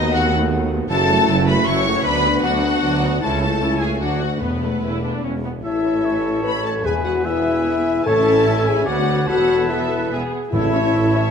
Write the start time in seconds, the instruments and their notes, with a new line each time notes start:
Already playing: tuba D#2, double bass section D#2, cello section D#2, viola section A3 B3, french horn section B3 F#4, violin section D#4 D#5
0.13 violin section F#4 F#5
0.90 double bass section F#1, tuba F#1, cello section F#2, viola section F#3 E4, french horn section C#4 E4, violin section A4 A5
1.09 viola section A3 F#4
1.28 tuba F#1, double bass section F#1, cello section F#2, viola section F#3 E4
1.48 viola section A3 F#4, violin section B4 B5
1.66 double bass section F#1, tuba F#1, cello section F#2, viola section F#3 E4, violin section C#5 C#6
1.86 viola section A3 F#4
2.04 cello section D2, double bass section D2, tuba D2, viola section F#3 D4, french horn section B3 D4, violin section B4 B5
2.25 viola section B3 F#4
2.43 cello section D2, double bass section D2, tuba D2, viola section F#3 D4, violin section F#4 F#5
2.64 viola section B3 F#4
2.83 cello section D2, tuba D2, double bass section D2, viola section F#3 D4
3.04 viola section B3 F#4
3.22 cello section C#2, tuba C#2, double bass section C#2, french horn section A3 E4, viola section C#4 E4, violin section A4 A5
3.42 viola section A3 C#4
3.61 cello section C#2, tuba C#2, double bass section C#2, viola section C#4 E4
3.79 viola section A3 C#4, violin section G#4 G#5
3.99 cello section D2, double bass section D2, tuba D2, viola section F#3 D4, french horn section D4, violin section F#4 F#5
4.22 viola section A3 F#4
4.40 tuba E1, double bass section E1, cello section E2, timpani E2, violin section B3 B4, french horn section B3, viola section B3
4.63 viola section A3
4.83 tuba E1, double bass section E1, cello section E2, viola section E4
5.04 viola section D4
5.23 tuba E1, double bass section E1, cello section E2, french horn section G#3, viola section C#4
5.44 viola section B3
5.63 double bass section A1, tuba A1, cello section A2, viola section C#4 A4, french horn section E4, clarinet C#5, violin section E5, oboe E5, flute A5
6.05 oboe C#5
6.43 french horn section B4, violin section B5
6.64 french horn section A4, violin section A5
6.85 double bass section E1, tuba E1, timpani E2, cello section E2, viola section B3 G#4, french horn section G#4, clarinet B4, oboe B4, violin section G#5, flute G#5
7.05 french horn section F#4, violin section F#5
7.25 french horn section E4, oboe E5, violin section E5
8.06 tuba A1, double bass section A1, cello section A2, timpani A2, viola section C#4 E4, french horn section A4, oboe C#5, clarinet C#5, violin section E5 A5, flute E5
8.47 oboe E5
8.68 french horn section G#4, violin section G#5
8.86 cello section D2, double bass section D2, tuba D2, viola section B3 F#4, french horn section F#4, violin section B4 F#5, oboe D5, flute F#5
9.26 double bass section E1, tuba E1, cello section E2, viola section B3 A4, french horn section F#4, oboe B4, violin section E5 F#5, flute A5
9.68 viola section B3 A4, french horn section E4, clarinet B4, violin section E5
10.11 double bass section E1, tuba E1, cello section E2, viola section B3 G#4, violin section E5, flute G#5
10.52 tuba A1, double bass section A1, timpani A2, cello section A2, french horn section E4, viola section E4 A4, violin section C#5 E5, clarinet C#5, flute A5
10.74 viola section C#4 C#5, violin section E5
10.93 tuba A1, double bass section A1, cello section A2, viola section E4 A4, violin section C#5, oboe C#5
11.15 viola section C#4 C#5, violin section E5